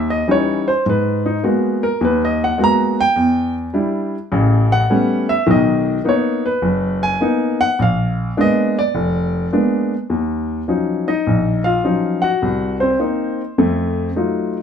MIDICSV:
0, 0, Header, 1, 2, 480
1, 0, Start_track
1, 0, Key_signature, -6, "minor"
1, 0, Tempo, 578592
1, 700, Time_signature, 4, 2, 24, 8
1, 12132, End_track
2, 0, Start_track
2, 0, Title_t, "Grand piano"
2, 0, Program_c, 0, 0
2, 0, Note_on_c, 0, 39, 68
2, 86, Note_on_c, 0, 75, 83
2, 164, Note_off_c, 0, 39, 0
2, 228, Note_off_c, 0, 75, 0
2, 228, Note_on_c, 0, 52, 57
2, 230, Note_on_c, 0, 55, 49
2, 231, Note_on_c, 0, 61, 52
2, 235, Note_on_c, 0, 63, 60
2, 260, Note_on_c, 0, 73, 85
2, 552, Note_off_c, 0, 73, 0
2, 561, Note_off_c, 0, 52, 0
2, 562, Note_on_c, 0, 72, 81
2, 563, Note_off_c, 0, 55, 0
2, 563, Note_off_c, 0, 61, 0
2, 565, Note_off_c, 0, 63, 0
2, 706, Note_off_c, 0, 72, 0
2, 713, Note_on_c, 0, 44, 60
2, 743, Note_on_c, 0, 71, 75
2, 1034, Note_off_c, 0, 71, 0
2, 1043, Note_on_c, 0, 63, 65
2, 1124, Note_off_c, 0, 44, 0
2, 1187, Note_off_c, 0, 63, 0
2, 1192, Note_on_c, 0, 56, 56
2, 1192, Note_on_c, 0, 58, 53
2, 1196, Note_on_c, 0, 59, 52
2, 1198, Note_on_c, 0, 66, 60
2, 1520, Note_on_c, 0, 70, 81
2, 1523, Note_off_c, 0, 56, 0
2, 1524, Note_off_c, 0, 58, 0
2, 1525, Note_off_c, 0, 59, 0
2, 1526, Note_off_c, 0, 66, 0
2, 1665, Note_off_c, 0, 70, 0
2, 1666, Note_on_c, 0, 39, 76
2, 1696, Note_on_c, 0, 71, 76
2, 1834, Note_off_c, 0, 71, 0
2, 1864, Note_on_c, 0, 75, 86
2, 1999, Note_off_c, 0, 75, 0
2, 2025, Note_on_c, 0, 78, 86
2, 2081, Note_off_c, 0, 39, 0
2, 2141, Note_on_c, 0, 56, 53
2, 2149, Note_on_c, 0, 58, 52
2, 2149, Note_on_c, 0, 59, 50
2, 2151, Note_on_c, 0, 66, 60
2, 2159, Note_off_c, 0, 78, 0
2, 2188, Note_on_c, 0, 82, 103
2, 2477, Note_off_c, 0, 82, 0
2, 2478, Note_off_c, 0, 56, 0
2, 2482, Note_off_c, 0, 58, 0
2, 2482, Note_off_c, 0, 59, 0
2, 2483, Note_off_c, 0, 66, 0
2, 2493, Note_on_c, 0, 79, 102
2, 2620, Note_on_c, 0, 40, 66
2, 2925, Note_off_c, 0, 79, 0
2, 3037, Note_off_c, 0, 40, 0
2, 3099, Note_on_c, 0, 55, 56
2, 3104, Note_on_c, 0, 62, 49
2, 3106, Note_on_c, 0, 64, 65
2, 3437, Note_off_c, 0, 55, 0
2, 3439, Note_off_c, 0, 62, 0
2, 3440, Note_off_c, 0, 64, 0
2, 3581, Note_on_c, 0, 33, 78
2, 3581, Note_on_c, 0, 49, 78
2, 3918, Note_on_c, 0, 78, 96
2, 3998, Note_off_c, 0, 33, 0
2, 3998, Note_off_c, 0, 49, 0
2, 4066, Note_on_c, 0, 55, 58
2, 4067, Note_on_c, 0, 57, 55
2, 4071, Note_on_c, 0, 59, 53
2, 4071, Note_on_c, 0, 61, 65
2, 4357, Note_off_c, 0, 78, 0
2, 4391, Note_on_c, 0, 76, 91
2, 4400, Note_off_c, 0, 55, 0
2, 4401, Note_off_c, 0, 57, 0
2, 4403, Note_off_c, 0, 59, 0
2, 4403, Note_off_c, 0, 61, 0
2, 4534, Note_on_c, 0, 51, 74
2, 4540, Note_on_c, 0, 35, 72
2, 4541, Note_off_c, 0, 76, 0
2, 4569, Note_on_c, 0, 75, 87
2, 4954, Note_off_c, 0, 51, 0
2, 4957, Note_off_c, 0, 35, 0
2, 5002, Note_off_c, 0, 75, 0
2, 5015, Note_on_c, 0, 58, 57
2, 5021, Note_on_c, 0, 59, 58
2, 5021, Note_on_c, 0, 63, 65
2, 5050, Note_on_c, 0, 73, 78
2, 5347, Note_off_c, 0, 73, 0
2, 5355, Note_off_c, 0, 58, 0
2, 5356, Note_on_c, 0, 71, 79
2, 5357, Note_off_c, 0, 59, 0
2, 5357, Note_off_c, 0, 63, 0
2, 5494, Note_on_c, 0, 30, 74
2, 5831, Note_on_c, 0, 80, 99
2, 5913, Note_off_c, 0, 30, 0
2, 5954, Note_off_c, 0, 71, 0
2, 5979, Note_on_c, 0, 58, 58
2, 5983, Note_on_c, 0, 59, 54
2, 5987, Note_on_c, 0, 63, 65
2, 6273, Note_off_c, 0, 80, 0
2, 6310, Note_on_c, 0, 78, 103
2, 6316, Note_off_c, 0, 58, 0
2, 6318, Note_off_c, 0, 59, 0
2, 6321, Note_off_c, 0, 63, 0
2, 6460, Note_off_c, 0, 78, 0
2, 6463, Note_on_c, 0, 34, 65
2, 6490, Note_on_c, 0, 77, 89
2, 6879, Note_off_c, 0, 34, 0
2, 6922, Note_off_c, 0, 77, 0
2, 6945, Note_on_c, 0, 58, 60
2, 6946, Note_on_c, 0, 56, 58
2, 6948, Note_on_c, 0, 62, 65
2, 6949, Note_on_c, 0, 59, 57
2, 6975, Note_on_c, 0, 75, 95
2, 7269, Note_off_c, 0, 75, 0
2, 7279, Note_off_c, 0, 58, 0
2, 7280, Note_off_c, 0, 56, 0
2, 7281, Note_off_c, 0, 59, 0
2, 7281, Note_off_c, 0, 62, 0
2, 7289, Note_on_c, 0, 74, 90
2, 7422, Note_on_c, 0, 29, 77
2, 7838, Note_off_c, 0, 29, 0
2, 7881, Note_off_c, 0, 74, 0
2, 7903, Note_on_c, 0, 56, 53
2, 7904, Note_on_c, 0, 59, 54
2, 7905, Note_on_c, 0, 58, 55
2, 7908, Note_on_c, 0, 62, 61
2, 8238, Note_off_c, 0, 56, 0
2, 8239, Note_off_c, 0, 58, 0
2, 8239, Note_off_c, 0, 59, 0
2, 8241, Note_off_c, 0, 62, 0
2, 8376, Note_on_c, 0, 39, 60
2, 8795, Note_off_c, 0, 39, 0
2, 8858, Note_on_c, 0, 53, 48
2, 8860, Note_on_c, 0, 54, 44
2, 8864, Note_on_c, 0, 61, 44
2, 8868, Note_on_c, 0, 63, 49
2, 9182, Note_off_c, 0, 63, 0
2, 9191, Note_on_c, 0, 75, 82
2, 9195, Note_on_c, 0, 63, 63
2, 9196, Note_off_c, 0, 53, 0
2, 9197, Note_off_c, 0, 54, 0
2, 9199, Note_off_c, 0, 61, 0
2, 9347, Note_on_c, 0, 34, 67
2, 9635, Note_off_c, 0, 63, 0
2, 9659, Note_on_c, 0, 77, 84
2, 9670, Note_on_c, 0, 65, 67
2, 9681, Note_off_c, 0, 75, 0
2, 9761, Note_off_c, 0, 34, 0
2, 9823, Note_on_c, 0, 54, 43
2, 9825, Note_on_c, 0, 53, 51
2, 9827, Note_on_c, 0, 61, 43
2, 9830, Note_on_c, 0, 63, 55
2, 10113, Note_off_c, 0, 65, 0
2, 10135, Note_on_c, 0, 78, 91
2, 10150, Note_on_c, 0, 66, 73
2, 10155, Note_off_c, 0, 77, 0
2, 10159, Note_off_c, 0, 54, 0
2, 10160, Note_off_c, 0, 53, 0
2, 10161, Note_off_c, 0, 61, 0
2, 10163, Note_off_c, 0, 63, 0
2, 10306, Note_on_c, 0, 36, 64
2, 10586, Note_off_c, 0, 78, 0
2, 10593, Note_off_c, 0, 66, 0
2, 10621, Note_on_c, 0, 72, 75
2, 10638, Note_on_c, 0, 60, 58
2, 10721, Note_off_c, 0, 36, 0
2, 10769, Note_off_c, 0, 60, 0
2, 10782, Note_on_c, 0, 58, 50
2, 10782, Note_on_c, 0, 60, 46
2, 10788, Note_on_c, 0, 63, 53
2, 11119, Note_off_c, 0, 58, 0
2, 11119, Note_off_c, 0, 60, 0
2, 11122, Note_off_c, 0, 63, 0
2, 11268, Note_on_c, 0, 41, 68
2, 11269, Note_on_c, 0, 57, 68
2, 11682, Note_off_c, 0, 41, 0
2, 11683, Note_off_c, 0, 57, 0
2, 11746, Note_on_c, 0, 54, 46
2, 11750, Note_on_c, 0, 57, 44
2, 11750, Note_on_c, 0, 63, 48
2, 11756, Note_on_c, 0, 65, 53
2, 12030, Note_off_c, 0, 72, 0
2, 12081, Note_off_c, 0, 54, 0
2, 12083, Note_off_c, 0, 57, 0
2, 12084, Note_off_c, 0, 63, 0
2, 12086, Note_off_c, 0, 65, 0
2, 12132, End_track
0, 0, End_of_file